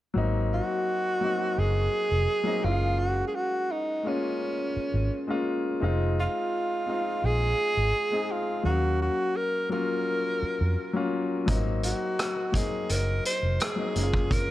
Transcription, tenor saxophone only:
0.54 F#4
1.59 G#4
2.64 F4
2.99 F#4
3.28 G#4
3.35 F#4
3.71 D#4
4.07 C#4
6.19 F4
7.26 G#4
8.31 F4
8.65 F#4
9.02 F#4
9.36 A#4
9.72 A#4
11.85 F#4
12.57 G#4
12.91 A#4
13.26 C5
13.62 G#4
14.33 A#4

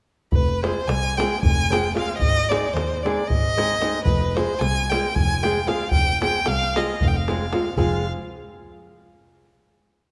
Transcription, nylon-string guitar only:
0.62 G#3 C4 F4 G#4
1.18 G#3 C4 F4 G#4
1.70 G#3 C4 F4 G#4
1.95 G#3 C4 F4 G#4
2.50 G#3 C4 D#4 G#4
3.05 G#3 C4 D#4 G#4
3.57 G#3 C4 D#4 G#4
3.81 G#3 C4 D#4 G#4
4.36 G#3 C4 F4 G#4
4.91 G#3 C4 F4 G#4
5.43 G#3 C4 F4 G#4
5.67 G#3 C4 F4 G#4
6.21 G#3 C4 F4 G#4
6.76 G#3 C4 F4 G#4
7.29 G#3 C4 F4 G#4
7.52 G#3 C4 F4 G#4
7.77 G#3 C4 F4 G#4

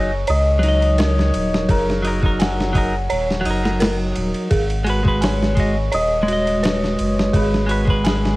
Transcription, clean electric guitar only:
Already playing: D#4 D#5
0.59 F#3
0.63 D#4
0.69 D#5
2.02 F#3 D#4
2.07 A#4
2.21 F#3 D#4
2.26 A#4
2.73 F#3 D#4
2.78 A#4
3.41 F#3
3.46 D#4
3.50 A#4
4.84 G#3 F#4
4.89 B4
5.03 G#3 F#4
5.08 B4
5.55 G#3 F#4
5.60 D#5
6.23 G#3
6.28 F#4
6.33 D#5
7.66 G#3 F#4
7.71 B4
7.85 G#3 F#4
7.90 B4

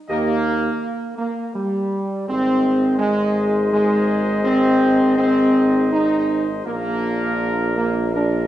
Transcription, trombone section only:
0.10 A#3
1.18 A#3
1.55 G3
2.28 C4
2.99 G#3
3.73 G#3
4.44 C4
5.18 C4
5.92 D#4
6.66 A#3
7.76 A#3
8.15 D4

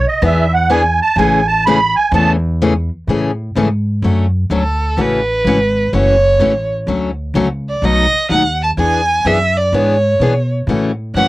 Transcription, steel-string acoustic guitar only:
0.22 E3 B3 D4 G#4
0.70 E3 B3 D4 G#4
1.18 C#3 E3 A3 C#4 G#4
1.67 C#3 E3 A3 C#4 G#4
2.13 C#3 E3 A3 C#4 G#4
2.62 C#3 E3 A3 C#4 G#4
3.09 C#3 E3 A3 C#4 G#4
3.56 C#3 E3 A3 C#4 G#4
4.04 D3 F#3 A3 C#4 F#4
4.51 D3 F#3 A3 C#4 F#4
4.98 C#3 E3 A3 C#4 F#4
5.47 C#3 E3 A3 C#4 F#4
5.93 C#3 E3 A3 C#4 F#4
6.40 C#3 E3 A3 C#4 F#4
6.88 D3 F#3 A3 C#4 F#4
7.35 D3 F#3 A3 C#4 F#4
7.83 B2 F#3 A3 D#4 F#4
8.30 B2 F#3 A3 D#4 F#4
8.78 E3 B3 D4 G#4
9.26 E3 B3 D4 G#4
9.74 E3 B3 D4 G#4
10.21 E3 B3 D4 G#4
10.69 C#3 E3 A3 C#4 F#4
11.16 C#3 E3 A3 C#4 F#4

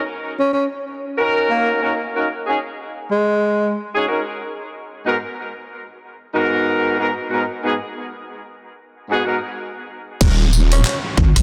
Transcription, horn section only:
1.18 C#4 D#4 F#4 A#4
1.82 C#4 D#4 F#4 A#4
2.14 C#4 D#4 F#4 A#4
2.47 C#4 D#4 F#4 G#4
3.94 C#4 D#4 F#4 G#4
4.08 C#4 D#4 F#4 A#4
5.05 G#2 B3 D#4 F#4 A#4
6.34 G#2 B3 D#4 F#4 A#4
6.98 G#2 B3 D#4 F#4 A#4
7.30 G#2 B3 D#4 F#4 A#4
7.63 G#2 B3 D#4 F#4 G#4
9.10 G#2 B3 D#4 F#4 G#4
9.24 G#2 B3 D#4 F#4 A#4
10.21 C#4 D#4 F#4 A#4

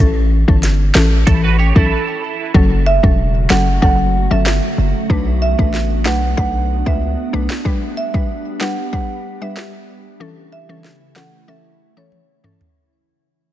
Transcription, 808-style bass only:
0.00 A1
0.48 G1
0.95 A1
1.27 A1
1.76 B1
2.55 F#1
3.04 E1
3.50 F#1
3.83 F#1
4.31 G1
4.78 F#1
5.10 B1
5.59 A1
6.06 B1
6.38 B1
6.87 C#2
7.33 B1

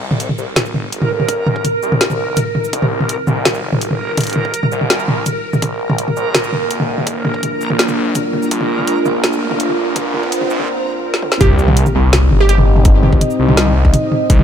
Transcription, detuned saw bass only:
Already playing: C2
0.38 C2
0.74 G1
1.83 C2
2.19 C2
2.73 C2
3.27 C2
3.63 G1
4.72 C2
5.08 C2
5.62 A#1
6.16 A#1
6.53 F1
7.61 A#1
7.97 A#1
8.51 A#1
9.06 A#1
10.50 A#1
11.41 C2
11.95 C2
12.31 G1
13.39 C2
13.76 C2
14.30 C2

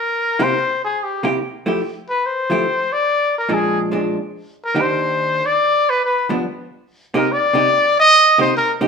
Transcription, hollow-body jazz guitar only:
0.39 C3 A#3 E4 G4
1.23 C3 A#3 E4 G4
1.66 F3 A3 E4 G4
2.50 F3 A3 E4 G4
3.49 A#2 F3 G#3 D4
3.91 A#2 F3 G#3 D4
4.75 D#3 A#3 D4 G4
6.29 G2 F3 B3 D4
7.14 C3 A#3 D#4 G4
7.53 C3 A#3 D#4 G4
8.38 C3 A#3 D#4 G4
8.81 C3 A#3 D#4 G4

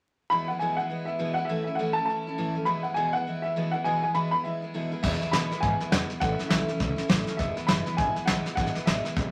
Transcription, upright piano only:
0.30 B5
0.48 F#5
0.59 G#5
0.77 F#5
1.05 E5
1.34 F#5
1.45 E5
1.64 E5
1.75 F#5
1.93 A5
2.05 A5
2.65 B5
2.83 F#5
2.94 G#5
3.13 F#5
3.42 E5
3.71 F#5
3.84 G#5
4.03 G#5
4.14 B5
4.31 B5
4.44 E5
5.03 E5
5.31 B5
5.60 G#5
5.91 F#5
6.20 F#5
6.49 E5
7.37 E5
7.67 B5
7.97 G#5
8.26 F#5
8.55 F#5
8.86 E5

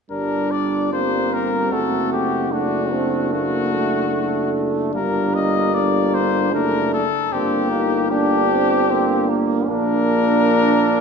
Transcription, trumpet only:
0.11 A#4
0.51 D5
0.93 C5
1.34 A#4
1.73 A4
2.13 G4
2.52 F#4
3.33 F#4
4.96 A#4
5.35 D#5
5.74 D5
6.14 C5
6.54 A#4
6.94 A4
7.33 G4
8.11 G4
9.70 A#4

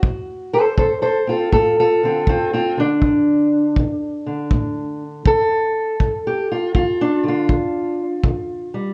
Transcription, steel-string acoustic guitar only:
Already playing: F#4
0.02 D2
0.53 A4 C5
0.78 D3 A4 C5
1.02 A4 C5
1.27 C4 F4 A4
1.52 A2 F4 A4
1.80 F4 A4
2.03 D3 C4 F4
2.29 D3 C4 F4
2.54 C4 F4
2.77 D3 D4
3.04 D2
3.79 D3
4.27 D3
4.53 A2
5.26 D3 A4
6.01 G2
6.27 G4
6.51 F4
6.75 D3 F4
7.01 D4
7.23 D3
7.28 F4
7.50 D3
8.25 D3
8.74 G3

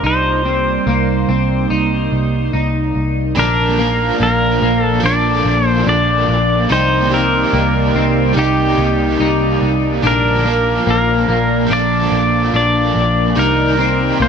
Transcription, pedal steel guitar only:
0.07 C5
3.39 A#4
4.23 A#4
4.81 A4
5.06 D5
5.67 C5
5.89 D5
6.72 C5
7.14 A#4
8.39 G4
10.07 A#4
10.90 A#4
11.73 D5
12.56 D5
13.39 A#4
14.22 C5

